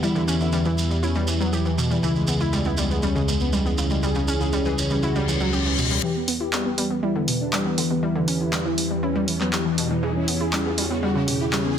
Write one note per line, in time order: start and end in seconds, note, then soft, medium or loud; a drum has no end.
0.00 2.00 E2 medium
0.00 6.02 E2 medium
0.00 0.15 G3 loud
0.00 1.99 B3 medium
0.00 1.99 E4 medium
0.00 0.12 E4 loud
0.00 1.99 G4 loud
0.00 shekere soft
0.15 0.21 D3 loud
0.15 0.24 E3 medium
0.15 shekere soft
0.28 0.37 E3 medium
0.28 0.40 C#4 loud
0.28 shekere medium
0.40 0.52 D3 medium
0.40 0.49 E4 medium
0.40 shekere soft
0.53 0.62 E3 medium
0.53 0.65 G3 loud
0.53 shekere soft
0.65 0.75 E3 loud
0.65 0.74 E4 medium
0.65 shekere soft
0.78 0.87 E3 medium
0.78 shekere medium
0.91 0.99 E3 medium
0.91 1.02 G3 medium
0.91 shekere soft
1.03 1.12 C#4 medium
1.03 1.09 E4 medium
1.03 shekere soft
1.15 1.24 E3 medium
1.15 1.25 G3 loud
1.15 shekere soft
1.27 1.37 E3 medium
1.27 shekere medium
1.40 1.46 F#3 loud
1.40 1.49 B3 medium
1.40 shekere soft
1.53 1.62 E3 medium
1.53 1.62 G4 medium
1.53 shekere medium
1.65 1.75 E3 medium
1.65 1.74 E3 medium
1.65 shekere soft
1.78 1.88 B2 loud
1.78 shekere medium
1.91 1.99 E3 medium
1.91 2.02 G3 medium
1.91 shekere soft
2.03 6.00 C#2 medium
2.03 2.15 E3 loud
2.03 5.99 C#4 medium
2.03 2.12 E4 loud
2.03 5.99 E4 medium
2.03 5.99 G#4 medium
2.03 shekere soft
2.16 2.24 G#3 medium
2.16 shekere soft
2.27 2.37 G#3 medium
2.27 2.34 B3 medium
2.27 shekere medium
2.40 2.50 E4 medium
2.40 2.49 E4 medium
2.40 shekere soft
2.53 2.65 G3 loud
2.53 2.62 G#3 medium
2.53 shekere soft
2.65 2.75 B3 medium
2.65 2.74 E4 medium
2.65 shekere soft
2.77 2.87 G3 loud
2.77 2.87 G#3 medium
2.77 shekere medium
2.91 2.99 G#3 medium
2.91 3.00 B3 medium
2.91 shekere soft
3.03 3.15 G3 loud
3.03 3.12 C#4 medium
3.03 shekere medium
3.16 3.21 C#3 loud
3.16 3.24 G#3 medium
3.16 shekere soft
3.28 3.38 B2 medium
3.28 3.37 G#3 medium
3.28 shekere medium
3.40 3.49 B3 medium
3.40 shekere soft
3.53 3.65 G3 medium
3.53 3.62 G#3 medium
3.53 shekere medium
3.66 3.74 G#3 medium
3.66 3.75 B3 medium
3.66 shekere soft
3.78 3.84 C#3 loud
3.78 shekere medium
3.90 4.02 G3 medium
3.90 3.99 G#3 medium
3.90 shekere soft
4.03 4.15 G3 loud
4.03 4.12 G#4 loud
4.03 shekere soft
4.15 4.21 C#3 loud
4.15 4.24 C#4 medium
4.15 shekere soft
4.28 4.37 C#4 medium
4.28 4.40 C#4 loud
4.28 shekere medium
4.41 4.52 C#3 medium
4.41 4.49 G#4 medium
4.41 shekere soft
4.53 4.65 G3 loud
4.53 4.62 C#4 medium
4.53 shekere soft
4.65 4.75 E3 loud
4.65 4.74 G#4 medium
4.65 shekere soft
4.78 4.87 C#4 medium
4.78 shekere medium
4.90 5.02 G3 medium
4.90 4.99 C#4 medium
4.90 shekere soft
5.03 5.09 E4 medium
5.03 5.12 F#4 medium
5.03 reverse cymbal medium
5.03 shekere soft
5.16 5.25 G3 loud
5.16 5.24 C#4 medium
5.16 shekere soft
5.28 5.37 E3 medium
5.28 5.37 C#4 medium
5.28 shekere medium
5.40 5.46 F#3 medium
5.40 5.49 F#4 medium
5.40 shekere soft
5.53 5.62 C#4 medium
5.53 5.62 G4 medium
5.53 shekere medium
5.65 5.75 E3 medium
5.65 5.74 C#4 medium
5.65 shekere soft
5.78 5.87 B2 loud
5.78 shekere medium
5.90 6.02 G3 medium
5.90 5.99 C#4 medium
5.90 shekere soft
6.03 11.79 E2 medium
6.03 9.99 E3 medium
6.03 6.15 E3 loud
6.03 11.79 E4 medium
6.03 9.99 G4 medium
6.03 6.12 G4 loud
6.03 9.99 B4 medium
6.03 riser medium
6.15 6.24 B3 medium
6.28 6.37 B3 medium
6.28 6.34 B3 medium
6.28 open hi-hat loud
6.41 6.50 E4 medium
6.41 6.49 G4 medium
6.53 6.65 G3 loud
6.53 6.62 B3 medium
6.53 clap loud
6.65 6.75 B3 medium
6.65 6.74 G4 medium
6.78 6.87 G3 loud
6.78 6.87 B3 medium
6.78 open hi-hat loud
6.90 7.00 B3 medium
6.90 6.99 B3 medium
7.03 7.15 G3 loud
7.03 7.12 E4 medium
7.15 7.21 D3 loud
7.15 7.24 B3 medium
7.28 7.37 B2 medium
7.28 7.37 B3 medium
7.28 open hi-hat loud
7.41 7.49 D4 medium
7.53 7.65 G3 loud
7.53 7.62 B3 medium
7.53 clap loud
7.65 7.75 B3 medium
7.65 7.74 B3 medium
7.78 7.84 D3 loud
7.78 open hi-hat loud
7.91 8.02 G3 medium
7.91 7.99 B3 medium
8.03 8.15 G3 loud
8.03 8.12 E4 loud
8.15 8.21 D3 loud
8.15 8.24 E3 medium
8.28 8.37 E3 medium
8.28 8.40 C#4 loud
8.28 open hi-hat loud
8.40 8.52 D3 medium
8.40 8.49 E4 medium
8.53 8.62 E3 medium
8.53 8.65 G3 loud
8.53 clap loud
8.65 8.75 E3 loud
8.65 8.74 E4 medium
8.78 8.87 E3 medium
8.78 open hi-hat loud
8.90 8.99 E3 medium
8.90 9.02 G3 medium
9.03 9.12 C#4 medium
9.03 9.09 E4 medium
9.16 9.24 E3 medium
9.16 9.25 G3 loud
9.28 9.37 E3 medium
9.28 open hi-hat loud
9.40 9.46 F#3 loud
9.40 9.49 B3 loud
9.40 clap soft
9.53 9.62 E3 medium
9.53 9.62 G4 medium
9.53 clap loud
9.66 9.74 E3 medium
9.66 9.75 E3 medium
9.78 9.87 B2 loud
9.78 open hi-hat loud
9.90 9.99 E3 medium
9.90 10.02 G3 medium
10.03 11.79 C#3 medium
10.03 10.15 E3 loud
10.03 11.79 C#4 medium
10.03 11.79 G#4 medium
10.03 10.12 G#4 loud
10.16 10.24 C#4 medium
10.28 10.34 B3 medium
10.28 10.37 C#4 medium
10.28 open hi-hat loud
10.41 10.50 E4 medium
10.41 10.49 G#4 medium
10.53 10.65 G3 loud
10.53 10.62 C#4 medium
10.53 clap loud
10.66 10.75 B3 medium
10.66 10.74 G#4 medium
10.78 10.87 G3 loud
10.78 10.87 C#4 medium
10.78 open hi-hat loud
10.91 11.00 B3 medium
10.91 10.99 C#4 medium
11.03 11.15 G3 loud
11.03 11.12 F#4 loud
11.15 11.21 C#3 loud
11.15 11.24 C#4 medium
11.28 11.37 B2 medium
11.28 11.37 C#4 medium
11.28 open hi-hat loud
11.41 11.49 E4 medium
11.53 11.65 G3 loud
11.53 11.62 C#4 medium
11.53 clap loud
11.66 11.75 B3 medium
11.66 11.74 C#4 medium